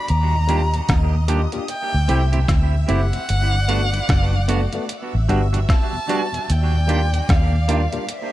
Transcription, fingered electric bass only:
0.10 D#2
0.89 D#2
1.94 D2
2.10 C2
2.49 D2
2.90 F#1
3.30 G1
4.10 F#1
5.15 A1
5.30 G1
6.50 D#2
7.30 D#2

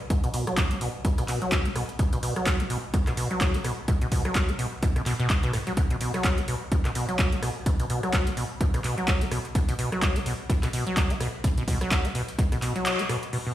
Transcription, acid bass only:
0.10 B2
0.24 B2
0.34 B2
0.47 F#3
0.71 B3
0.81 B2
1.05 B2
1.18 B2
1.28 B2
1.42 F#3
1.65 B3
1.76 B2
1.99 B2
2.13 B2
2.23 B2
2.36 F#3
2.60 B3
2.70 B2
2.94 B2
3.07 B2
3.17 B2
3.31 F#3
3.54 B3
3.64 B2
3.88 B2
4.02 B2
4.12 B2
4.25 F#3
4.49 B3
4.59 B2
4.83 B2
4.96 B2
5.06 B2
5.20 B2
5.43 B2
5.54 A2
5.67 F#3
5.77 B2
5.91 B2
6.01 B2
6.14 F#3
6.38 B3
6.48 B2
6.72 B2
6.85 B2
6.95 B2
7.09 F#3
7.32 B3
7.42 B2
7.66 B2
7.80 B2
7.90 B2
8.03 F#3
8.27 B3
8.37 B2
8.61 B2
8.74 B2
8.84 B2
8.98 F#3
9.21 B3
9.31 B2
9.55 B2
9.68 B2
9.79 B2
9.92 F#3
10.16 B3
10.26 B2
10.49 B2
10.63 B2
10.73 B2
10.87 F#3
11.10 B3
11.20 B2
11.44 B2
11.57 B2
11.68 B2
11.81 F#3
12.05 B3
12.15 B2
12.38 B2
12.52 B2
12.62 B2
12.75 F#3
12.99 B3
13.09 B2
13.33 B2
13.46 B2

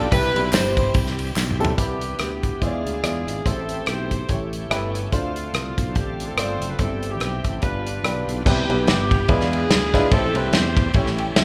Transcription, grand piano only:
0.12 C3 G3 C4 E4 B4
0.36 G3 C4 D4 B5
0.42 E4
1.60 G3 C4 E4 A4
1.77 C3 G3 B3 E4 B4
2.61 E3 G#3 E4 F4 C5
2.67 D5
3.03 G#3 E4 F4 D5
3.45 A2 A3 E4 G4 C5
4.29 A2 A3 E4 G4 C#5
4.70 A3 E4 G4 B4
5.12 D3 A3 D4 F4 C5
6.38 A3 D4 F4 D5
6.79 G2 G3 C4 E4 C5
7.62 G2 G3 D4 F4 B4
8.04 G3 D4 F4 B4
8.45 C3 G3 B3 C4 E4 B4
8.69 G3 B3 E4 B4
9.28 E3 G#3 D4 E4 F4 B4
9.93 G#3 D4 E4 F4 B4
10.12 A2 A3 C4 E4 G4 C5
10.35 A3 C4 E4 G4 C5
10.95 A2 A3 C#4 E4 G4 C#5
11.19 G5
11.36 E5

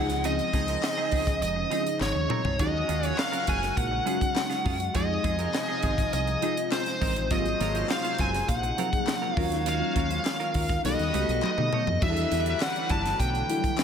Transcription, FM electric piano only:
Already playing: F3 C4 C#4 D#4 G#4
1.70 F3 G#3 C#4 D#4 G#4
2.58 F#3 G#3 C#4 D#4 F#4
4.06 F#3 G#3 C#4 D#4 F#4
4.94 F3 G#3 C4 D#4 G4
5.01 G#4
6.41 F3 G#3 C4 D#4 F4
7.30 F#3 A#3 C4 F4 G4
7.38 G#4
8.77 F3 F#3 A#3 C4 G#4
9.36 F#3 C#4 D#4 F4 A#4
10.84 G3 B3 D#4 F#4 A4
11.13 G3 B3 D#4 F#4 G4
11.21 A4
12.01 G3 D4 E4 F#4 G#4
12.09 A4
13.48 F#3 D4 E4 A4
13.55 G3

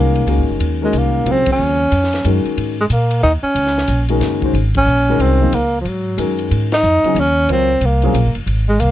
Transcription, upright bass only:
Already playing: C2
0.27 C#2
0.38 G#1
0.49 F#1
0.59 D#2
0.93 C2
1.25 C#2
1.46 muted upright bass stroke
1.58 D#2
1.92 F2
2.25 F#2
2.45 muted upright bass stroke
2.57 G#2
2.90 A#2
3.23 D#2
3.43 muted upright bass stroke
3.55 C#2
3.88 A#1
4.20 F#1
4.53 G#1
4.86 A#1
5.19 C2
5.52 C#2
5.84 G#2
6.18 F#2
6.51 G#2
6.83 F2
7.03 muted upright bass stroke
7.15 D#2
7.49 C#2
7.81 C2
8.13 A#1
8.25 G#1
8.36 F#1
8.46 G#1
8.80 C2

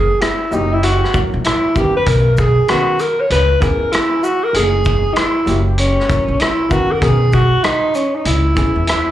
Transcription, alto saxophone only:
Already playing: G#4
0.21 E4
0.53 D#4
0.73 E4
0.84 F#4
1.46 E4
1.77 G4
1.97 B4
2.08 A#4
2.35 A#4
2.39 G#4
2.69 F#4
3.00 A#4
3.20 C#5
3.32 B4
3.61 A#4
3.93 E4
4.23 F#4
4.44 A#4
4.56 G#4
5.13 D#4 E4
5.79 C#4
6.41 E4
6.71 F#4
6.91 A#4
7.02 G#4
7.34 F#4
7.64 D#4
7.96 C#4
8.15 D#4
8.26 E4
8.89 E4

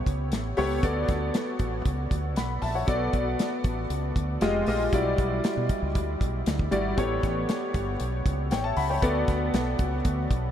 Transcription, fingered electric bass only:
0.06 C#2
0.32 A1
0.58 C#2
0.83 D2
1.09 D2
1.60 A1
1.86 C#2
2.11 D2
2.37 B1
2.62 A#1
2.88 B1
3.14 B1
3.64 A1
3.90 C#2
4.16 D2
4.41 F1
4.67 A#1
4.93 B1
5.18 B1
5.57 B2
5.82 C#2
5.95 D2
6.21 B1
6.47 D2
6.72 G#1
6.98 A1
7.23 A1
7.75 G1
8.00 B1
8.26 C#2
8.51 A1
8.77 C#2
9.03 D2
9.28 D2
9.54 B1
9.79 C#2
10.05 D2
10.30 B1

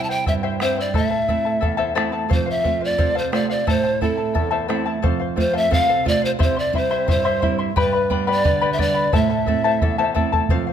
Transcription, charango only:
0.09 E4 C5 G5
0.26 E4 C5 E5 G5
0.43 E4 G4 C5 E5 G5
0.61 E4 G4 C5 E5 G5
0.77 E4 C5 G5
0.94 E4 A4 C5 E5 A5
1.10 E4 A4 A5
1.28 E4 A4 E5 A5
1.45 E4 A4 A5
1.61 E4 A4 E5 A5
1.77 E4 A4 C5 E5 A5
1.95 E4 A4 C5 E5 A5
2.12 E4 A4 A5
2.29 A4 C5 F5
2.46 C5 F5
2.63 A4 C5 F5
2.81 C5 F5
2.98 A4 C5 F5
3.15 A4 C5 F5
3.32 A4 C5 F5
3.49 C5 F5
3.67 E4 A4 C5 E5 A5
3.84 E4 A4 A5
4.01 E4 A4 E5 A5
4.17 E4 A4 A5
4.34 E4 A4 E5 A5
4.51 E4 A4 C5 E5 A5
4.68 E4 A4 C5 E5 A5
4.86 E4 A4 A5
5.02 A4 C5 F5
5.19 C5 F5
5.36 A4 C5 F5
5.53 A4 C5 F5
5.71 A4 C5 F5
5.89 A4 C5 F5
6.05 A4 C5 F5
6.22 C5 F5
6.39 E4 G4 C5 E5 C6
6.57 E4 E5 C6
6.74 E4 C5 E5 C6
6.91 E4 G4 C5 E5 C6
7.08 E4 C5 E5 C6
7.25 E4 G4 C5 E5 C6
7.41 E4 C5 E5 C6
7.59 E4 E5 C6
7.76 G4 B4 D5 G5 B5
7.93 B4 D5 B5
8.10 B4 D5 G5 B5
8.27 G4 B4 D5 G5 B5
8.44 B4 D5 G5 B5
8.61 G4 B4 D5 G5 B5
8.78 B4 D5 G5 B5
8.95 B4 D5 B5
9.12 E4 A4 C5 E5 A5
9.29 E4 A4 A5
9.46 E4 A4 E5 A5
9.64 E4 A4 C5 E5 A5
9.82 E4 A4 E5 A5
9.98 E4 A4 C5 E5 A5
10.15 E4 A4 E5 A5
10.32 E4 A4 A5
10.50 A4 C5 F5
10.67 C5 F5

